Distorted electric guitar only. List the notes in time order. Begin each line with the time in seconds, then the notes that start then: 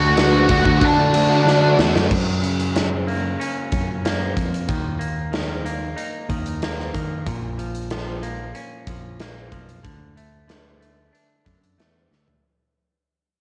Already playing: D3 A3 D4 F#4
0.17 D3 A3 D4 F#4
0.49 D3 A3 D4 F#4
0.64 A3 D4 F#4
0.98 A3 D4 F#4
1.15 D3 A3 D4 F#4
1.30 A3 D4 F#4
1.46 D3 A3 D4 F#4
1.79 D3 A3 D4 F#4
1.95 A3 D4 F#4